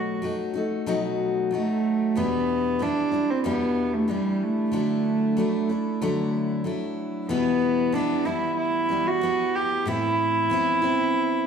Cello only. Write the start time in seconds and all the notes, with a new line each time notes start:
Already playing: F#4
1.52 A3
2.17 B3
2.82 D4
3.30 C4
3.46 B3
3.94 A3
4.11 G3
4.43 A3
7.30 B3
7.94 D4
8.26 E4
8.58 E4
9.07 F#4
9.55 G4
9.88 E4